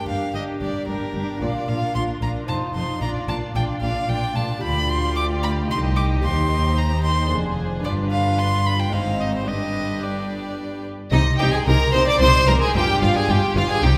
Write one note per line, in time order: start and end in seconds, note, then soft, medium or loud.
0.00 1.35 D4 soft
0.00 1.36 G4 soft
0.00 1.37 A#4 soft
0.07 0.15 G1 soft
0.07 0.15 G2 soft
0.07 0.32 G2 soft
0.07 0.32 D4 soft
0.07 0.33 G4 soft
0.07 0.34 A#4 soft
0.07 0.34 F5 medium
0.34 0.42 G1 soft
0.34 0.42 G2 soft
0.34 0.58 G2 soft
0.34 0.60 D4 soft
0.34 0.60 G4 soft
0.34 0.61 A#4 soft
0.34 0.43 D#5 medium
0.61 0.69 G1 soft
0.61 0.69 G2 soft
0.61 0.85 G2 soft
0.61 0.87 D4 soft
0.61 0.87 G4 soft
0.61 0.88 A#4 soft
0.61 0.87 D5 medium
0.87 0.95 G1 soft
0.87 0.95 G2 soft
0.87 1.12 G2 soft
0.87 1.13 D4 soft
0.87 1.14 G4 soft
0.87 1.43 A#4 medium
0.87 1.14 A#4 soft
1.14 1.22 G1 soft
1.14 1.22 G2 soft
1.14 1.39 G2 soft
1.14 1.41 D4 soft
1.14 1.41 G4 soft
1.14 1.41 A#4 soft
1.37 2.43 D4 soft
1.37 2.44 F4 soft
1.37 2.44 A#4 soft
1.41 1.50 A#1 soft
1.41 1.65 A#2 soft
1.41 1.50 A#2 medium
1.41 1.67 D4 soft
1.41 1.67 F4 soft
1.41 1.67 A#4 soft
1.41 1.70 D5 medium
1.68 1.76 A#1 soft
1.68 1.76 A#2 soft
1.68 1.92 A#2 soft
1.68 1.93 D4 soft
1.68 1.94 F4 soft
1.68 1.94 A#4 soft
1.68 1.94 F5 medium
1.95 2.03 A#1 soft
1.95 2.03 A#2 soft
1.95 2.19 A#2 soft
1.95 2.21 D4 soft
1.95 2.20 F4 soft
1.95 2.21 A#4 soft
1.95 2.03 C6 medium
2.21 2.30 A#1 soft
2.21 2.29 A#2 soft
2.21 2.46 A#2 soft
2.21 2.48 D4 soft
2.21 2.48 F4 soft
2.21 2.48 A#4 soft
2.21 2.30 A#5 medium
2.44 2.98 D#4 soft
2.44 2.97 F4 soft
2.44 2.99 C5 soft
2.48 2.56 F1 soft
2.48 2.56 F2 soft
2.48 2.72 F2 soft
2.48 2.74 D#4 soft
2.48 2.75 F4 soft
2.48 2.73 C5 soft
2.48 2.56 A5 medium
2.75 2.83 F1 soft
2.75 2.99 F2 soft
2.75 2.83 F2 soft
2.75 3.01 D#4 soft
2.75 3.01 F4 soft
2.75 3.01 C5 soft
2.75 3.01 C6 medium
2.97 4.56 D4 soft
2.97 4.57 F4 soft
2.97 4.58 D5 soft
3.01 3.10 A#1 soft
3.01 3.10 A#2 soft
3.01 3.26 A#2 soft
3.01 3.28 D4 soft
3.01 3.28 F4 soft
3.01 3.27 D5 medium
3.01 3.09 A#5 medium
3.28 3.37 A#1 soft
3.28 3.36 A#2 soft
3.28 3.53 A#2 soft
3.28 3.54 D4 soft
3.28 3.55 F4 soft
3.28 3.54 D5 soft
3.28 3.36 A5 medium
3.55 3.63 A#1 soft
3.55 3.63 A#2 soft
3.55 3.80 A#2 soft
3.55 3.80 D4 soft
3.55 3.82 F4 soft
3.55 3.80 D5 soft
3.55 3.63 G5 medium
3.81 3.90 A#1 soft
3.81 3.90 A#2 soft
3.81 4.06 A#2 soft
3.81 4.07 D4 soft
3.81 4.09 F4 soft
3.81 4.07 D5 soft
3.81 4.10 F5 medium
4.08 4.17 A#1 medium
4.08 4.17 A#2 soft
4.08 4.33 A#2 soft
4.08 4.34 D4 soft
4.08 4.35 F4 soft
4.08 4.34 D5 soft
4.08 4.37 G5 medium
4.35 4.43 A#1 soft
4.35 4.43 A#2 medium
4.35 4.60 A#2 soft
4.35 4.62 D4 soft
4.35 4.62 F4 soft
4.35 4.61 D5 soft
4.35 4.62 A5 medium
4.58 5.64 D4 soft
4.58 5.65 G4 soft
4.58 5.65 F5 soft
4.62 5.65 D2 soft
4.62 5.66 D2 medium
4.62 5.66 F4 medium
4.62 7.27 G4 medium
4.62 5.66 D5 medium
4.62 4.91 B5 medium
4.89 5.16 C6 medium
5.16 5.24 D6 medium
5.43 5.51 B5 medium
5.65 6.18 D#4 soft
5.65 7.31 D#4 soft
5.65 6.19 G4 soft
5.65 6.21 D#5 soft
5.69 6.24 C2 medium
5.69 6.22 D#5 medium
5.69 5.79 C6 medium
5.96 6.04 D6 medium
6.19 7.26 D#4 soft
6.19 7.26 G4 soft
6.19 7.27 C5 soft
6.19 7.85 C5 medium
6.23 7.27 D#2 soft
6.23 7.29 D#2 medium
6.23 6.79 C6 medium
6.77 7.03 A#5 medium
7.04 7.30 C6 medium
7.26 7.79 D4 soft
7.26 7.81 G#4 soft
7.26 7.83 C5 soft
7.30 7.85 F1 medium
7.30 7.81 F2 soft
7.30 7.85 F2 medium
7.30 8.93 D4 medium
7.30 7.85 G#4 medium
7.80 8.88 D4 soft
7.80 8.88 F4 soft
7.80 8.89 B4 soft
7.84 8.91 G1 medium
7.84 8.91 G2 medium
7.84 8.89 G2 soft
7.84 8.93 F4 medium
7.84 8.93 B4 medium
7.84 7.92 D5 medium
8.11 8.40 F5 medium
8.38 8.67 C6 medium
8.66 8.81 B5 medium
8.79 8.94 G5 medium
8.87 9.43 G#3 soft
8.87 9.44 C4 soft
8.87 9.42 D#4 soft
8.91 9.47 G#1 medium
8.91 9.47 G#2 medium
8.91 9.44 G#2 soft
8.91 9.48 C4 soft
8.91 9.48 D#4 medium
8.91 9.44 C5 soft
8.91 9.47 C5 medium
8.91 9.22 F5 medium
9.20 9.34 D#5 medium
9.34 9.49 C5 medium
9.43 11.06 D4 soft
9.43 11.07 B4 soft
9.43 10.89 B4 medium
9.47 10.92 G1 soft
9.47 10.88 G2 soft
9.47 10.92 G2 medium
9.47 10.92 D4 medium
9.47 10.89 G4 soft
9.47 10.04 D#5 medium
10.03 10.85 D5 medium
11.11 11.20 C2 medium
11.11 11.37 C3 medium
11.11 11.20 C3 medium
11.11 11.20 D#4 medium
11.11 11.21 D#4 medium
11.11 11.37 D#5 loud
11.26 11.48 D#4 medium
11.38 11.48 C2 medium
11.38 11.48 C3 medium
11.38 11.64 C3 medium
11.38 11.62 C4 medium
11.38 11.47 D#4 medium
11.38 11.45 G4 medium
11.38 11.53 G4 medium
11.38 11.52 G5 medium
11.53 11.75 D#4 soft
11.53 11.67 G#4 medium
11.53 11.59 G#4 medium
11.53 11.66 G#5 medium
11.66 11.74 C2 medium
11.66 11.91 C3 medium
11.66 11.74 C3 medium
11.66 11.75 D#4 medium
11.66 11.88 G4 medium
11.66 11.93 A#4 medium
11.66 11.93 A#5 loud
11.80 12.02 D#4 medium
11.93 12.02 C2 medium
11.93 12.02 C3 medium
11.93 12.18 C3 medium
11.93 12.16 C4 medium
11.93 12.02 D#4 medium
11.93 12.07 C5 medium
11.93 12.06 C5 medium
11.93 12.07 C6 loud
12.07 12.29 D#4 medium
12.07 12.21 D5 medium
12.07 12.20 D5 medium
12.07 12.21 D6 loud
12.20 12.29 C2 medium
12.20 12.45 C3 medium
12.20 12.29 C3 medium
12.20 12.29 D#4 medium
12.20 12.42 G4 medium
12.20 12.48 C5 medium
12.20 12.49 C5 loud
12.20 12.47 C6 loud
12.47 12.55 C2 medium
12.47 12.73 C3 medium
12.47 12.56 C3 medium
12.47 12.56 D#4 medium
12.47 12.60 A#4 medium
12.47 12.62 A#4 medium
12.47 12.70 C5 medium
12.47 12.53 A#5 medium
12.61 12.75 D#4 medium
12.61 12.75 G#4 medium
12.61 12.75 G#5 medium
12.73 12.82 G1 medium
12.73 12.83 G2 medium
12.73 13.00 G2 medium
12.73 12.83 F4 medium
12.73 13.02 G4 medium
12.73 13.04 G4 medium
12.73 13.01 G5 loud
12.89 13.10 D4 medium
13.01 13.10 G1 medium
13.01 13.26 G2 medium
13.01 13.11 G2 medium
13.01 13.24 B3 medium
13.01 13.15 F4 medium
13.01 13.18 F4 medium
13.01 13.10 F4 medium
13.01 13.15 F5 medium
13.15 13.37 D4 soft
13.15 13.29 G#4 medium
13.15 13.32 G#4 medium
13.15 13.29 G#5 loud
13.28 13.36 G1 medium
13.28 13.53 G2 medium
13.28 13.37 G2 medium
13.28 13.50 F4 medium
13.28 13.38 F4 medium
13.28 13.56 G4 medium
13.28 13.58 G4 medium
13.28 13.56 G5 medium
13.42 13.64 D4 medium
13.55 13.64 G1 medium
13.55 13.80 G2 medium
13.55 13.64 G2 medium
13.55 13.77 B3 medium
13.55 13.69 F4 medium
13.55 13.64 F4 medium
13.55 13.62 F4 medium
13.55 13.69 F5 loud
13.69 13.83 D4 medium
13.69 13.85 G#4 medium
13.69 13.83 G#4 medium
13.69 13.83 G#5 loud
13.83 13.91 C2 medium
13.83 13.98 C3 medium
13.83 13.91 C3 medium
13.83 13.91 D#4 medium
13.83 13.88 G4 medium
13.83 13.98 G4 medium
13.83 13.96 G5 loud